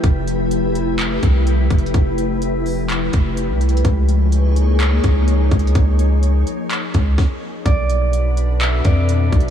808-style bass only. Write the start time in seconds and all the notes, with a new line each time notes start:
0.04 F1
1.23 C2
1.71 F1
1.94 F1
3.14 F1
3.49 C2
3.85 C#2
5.04 C#2
5.51 C#2
5.75 C#2
6.95 C#2
7.66 B1
8.85 F2
9.32 B1